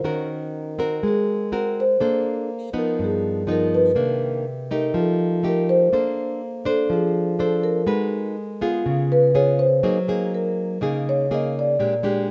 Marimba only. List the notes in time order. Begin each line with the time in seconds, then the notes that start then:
0.82 A#4
1.08 G#4
1.57 A#4
1.80 C5
2.78 A#4
3.04 G#4
3.52 A#4
3.74 B4
4.73 A#4
4.98 A4
5.48 A#4
5.69 C5
6.68 A4
6.93 G#4
7.40 A4
7.64 A#4
9.12 B4
9.35 C#5
9.59 C5
10.35 A#4
11.09 C#5
11.34 D#5
11.59 D5